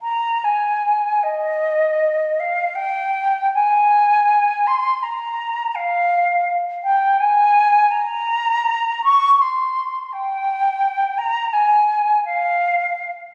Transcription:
\new Staff \with { instrumentName = "Flute" } { \time 6/8 \key f \minor \tempo 4. = 54 bes''8 aes''4 ees''4. | f''8 g''4 aes''4. | c'''8 bes''4 f''4 r8 | g''8 aes''4 bes''4. |
des'''8 c'''4 g''4. | bes''8 aes''4 f''4 r8 | }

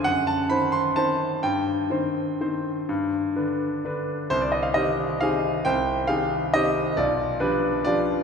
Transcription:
\new Staff \with { instrumentName = "Grand piano" } { \time 3/4 \key c \minor \tempo 4 = 132 << { fis''8 a''8 b''8 c'''8 a''4 | g''2.~ | g''2~ g''8 r8 | c''16 d''16 ees''16 f''16 <g' ees''>4 <aes' f''>4 |
<c'' g''>4 <aes' f''>4 <g' ees''>4 | <f' d''>4 <d' b'>4 <f' d''>4 | } \\ { fis,4 <dis c' c''>4 <dis c' c''>4 | g,4 <ees c' c''>4 <ees c' c''>4 | g,4 <d d' b'>4 <d d' b'>4 | c,4 <ees c'>4 <ees c' g'>4 |
c,4 <ees c' g'>4 <ees c'>4 | b,,4 <f g'>4 <f d' g'>4 | } >> }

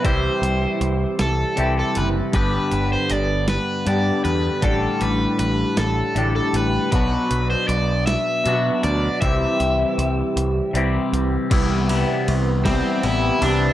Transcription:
<<
  \new Staff \with { instrumentName = "Overdriven electric guitar" } { \time 6/8 \key c \lydian \tempo 4. = 52 c''4. a'8. a'16 b'8 | b'8. c''16 d''8 b'8 d''8 b'8 | a'8 b'8 b'8 a'8. a'16 b'8 | b'8. c''16 d''8 e''4 d''8 |
e''2 r4 | r4. c'8 e'8 d'8 | }
  \new Staff \with { instrumentName = "Clean electric guitar" } { \time 6/8 \key c \lydian <c g c' e' g'>2 <c g c' e' g'>4 | <g, d g b d' g'>2 <g, d g b d' g'>4 | <a, d g d' g'>2 <a, d g d' g'>4 | <b, fis b d' fis'>2 <b, fis b d' fis'>4 |
<c g c' e' g'>2 <c g c' e' g'>4 | <c g b e'>8 <c g b e'>4 <c g b e'>8 <c g b e'>8 <c g b e'>8 | }
  \new Staff \with { instrumentName = "Clean electric guitar" } { \clef bass \time 6/8 \key c \lydian <c e g e' g'>2 <c e g e' g'>4 | <g, d g b d' g'>2 <g, d g b d' g'>4 | <a, d g d' g'>2 <a, d g d' g'>4 | <b, fis b d' fis'>2 <b, fis b d' fis'>4 |
<c e g c' g'>2 <c e g c' g'>4 | <c e g b g'>8 <c e g b g'>4 <c e g b g'>8 <c e g b g'>8 <c e g b g'>8 | }
  \new Staff \with { instrumentName = "Picked electric bass" } { \clef bass \time 6/8 \key c \lydian c,8 c,8 c,8 c,8 c,8 fis,,8 | g,,8 g,,8 g,,4 g,8 e,8 | a,,8 a,,8 a,,8 a,,8 a,,8 a,,8 | b,,8 b,,8 b,,4 b,8 d,8 |
c,8 c,8 c,8 c,8 c,8 c,8 | c,4 c,4 a,,8 c,8 | }
  \new DrumStaff \with { instrumentName = "Drums" } \drummode { \time 6/8 <hh bd>8 hh8 hh8 <hh sn>8 hh8 hh8 | <hh bd>8 hh8 hh8 <hh sn>8 hh8 hh8 | <hh bd>8 hh8 hh8 <hh sn>8 hh8 hh8 | <hh bd>8 hh8 hh8 <hh sn>8 hh8 hh8 |
<hh bd>8 hh8 hh8 hh8 hh8 hh8 | <cymc bd cymr>8 cymr8 cymr8 <bd cymr sn>8 cymr8 cymr8 | }
>>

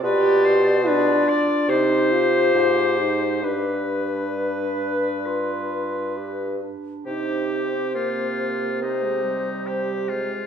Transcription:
<<
  \new Staff \with { instrumentName = "Flute" } { \time 4/4 \key c \minor \tempo 4 = 68 d''4 d''4 c''2 | b'2.~ b'8 r8 | c''2 c''2 | }
  \new Staff \with { instrumentName = "Oboe" } { \time 4/4 \key c \minor b'8 c''8 b'8 d''8 c''2 | b'2.~ b'8 r8 | g'4 f'4 ees'4 g'8 f'8 | }
  \new Staff \with { instrumentName = "Clarinet" } { \time 4/4 \key c \minor f'4 f'4 g'2 | g'4 b'4 f'4 g'8 d'8 | g'2 g'2 | }
  \new Staff \with { instrumentName = "French horn" } { \time 4/4 \key c \minor g'4 d'4 ees'8 f'4 ees'8 | d'2.~ d'8 r8 | ees'8. c'16 bes4 c'16 aes16 g4 aes8 | }
  \new Staff \with { instrumentName = "Bassoon" } { \clef bass \time 4/4 \key c \minor b,2 c4 aes,4 | g,2.~ g,8 r8 | c1 | }
>>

